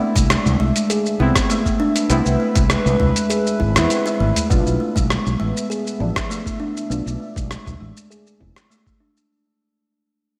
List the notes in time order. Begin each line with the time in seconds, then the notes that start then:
Already playing: B3 C4 E4 D5 E5
0.00 A3
0.16 C2 G#3, kick, closed hi-hat, shaker
0.30 cross-stick, closed hi-hat, shaker
0.46 C2, udu, shaker
0.60 C2 G#3
0.76 closed hi-hat, shaker
0.90 G#4, closed hi-hat, shaker
1.06 shaker
1.20 C2 B3 C4 E4
1.36 kick, cross-stick, closed hi-hat, shaker
1.50 A3, closed hi-hat, shaker
1.66 A3, kick, shaker
1.80 D4
1.86 B4
1.96 closed hi-hat, shaker
2.10 C2 A3 B3 C4 E4, closed hi-hat, shaker
2.26 C2, shaker
2.40 A3
2.55 C2 G#3, kick, closed hi-hat, shaker
2.70 cross-stick, closed hi-hat, shaker
2.86 C2, shaker
3.00 C2 G#3, udu
3.16 closed hi-hat, shaker
3.30 G#4, closed hi-hat, shaker
3.47 shaker
3.60 G#1 E4, kick
3.75 E2 B3 C4 E4, cross-stick, closed hi-hat, shaker
3.90 G#3, closed hi-hat, shaker
4.06 E4, shaker
4.20 G#1 A3
4.36 closed hi-hat, udu, shaker
4.50 B1 A3 B3 D4 F4, kick, shaker
4.66 B1, shaker
4.80 A3
4.96 B1 G#3, kick, shaker
5.10 E5, cross-stick, shaker
5.27 B1, shaker
5.40 A1 G#3
5.57 shaker
5.70 G#4, shaker
5.87 shaker
5.99 A1 F3 B3 D4 E4
6.16 kick, cross-stick, shaker
6.30 A3, shaker
6.46 A3, kick, shaker
6.58 D4 D5
6.77 shaker
6.90 B1 A3 B3 D4 F4, shaker
7.06 B1, shaker
7.20 A3
7.36 B1 G#3, kick, shaker
7.51 cross-stick, shaker
7.66 B1, udu, shaker
7.80 A1 G#3
7.97 shaker
8.11 G#4, shaker
8.27 shaker
8.40 F1 A3 B3 D4 E4 F4, kick
8.56 cross-stick, shaker
8.70 A3, shaker
8.86 A3, kick, shaker
9.00 D4
9.17 shaker